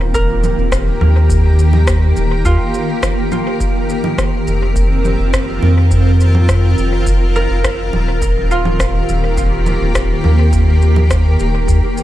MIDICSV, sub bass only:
0, 0, Header, 1, 2, 480
1, 0, Start_track
1, 0, Tempo, 576923
1, 1081, Time_signature, 4, 2, 24, 8
1, 10010, End_track
2, 0, Start_track
2, 0, Title_t, "Sub bass"
2, 0, Program_c, 0, 38
2, 0, Note_on_c, 0, 27, 102
2, 457, Note_off_c, 0, 27, 0
2, 479, Note_on_c, 0, 27, 87
2, 816, Note_off_c, 0, 27, 0
2, 839, Note_on_c, 0, 39, 103
2, 1777, Note_off_c, 0, 39, 0
2, 1799, Note_on_c, 0, 27, 99
2, 2034, Note_off_c, 0, 27, 0
2, 2039, Note_on_c, 0, 39, 95
2, 2146, Note_off_c, 0, 39, 0
2, 3719, Note_on_c, 0, 29, 101
2, 4298, Note_off_c, 0, 29, 0
2, 4320, Note_on_c, 0, 29, 85
2, 4657, Note_off_c, 0, 29, 0
2, 4679, Note_on_c, 0, 41, 101
2, 5617, Note_off_c, 0, 41, 0
2, 5638, Note_on_c, 0, 29, 104
2, 6217, Note_off_c, 0, 29, 0
2, 6241, Note_on_c, 0, 29, 78
2, 6577, Note_off_c, 0, 29, 0
2, 6600, Note_on_c, 0, 27, 90
2, 7538, Note_off_c, 0, 27, 0
2, 7559, Note_on_c, 0, 27, 100
2, 8137, Note_off_c, 0, 27, 0
2, 8162, Note_on_c, 0, 27, 86
2, 8498, Note_off_c, 0, 27, 0
2, 8521, Note_on_c, 0, 39, 105
2, 9458, Note_off_c, 0, 39, 0
2, 9479, Note_on_c, 0, 27, 102
2, 9716, Note_off_c, 0, 27, 0
2, 9721, Note_on_c, 0, 39, 93
2, 9827, Note_off_c, 0, 39, 0
2, 10010, End_track
0, 0, End_of_file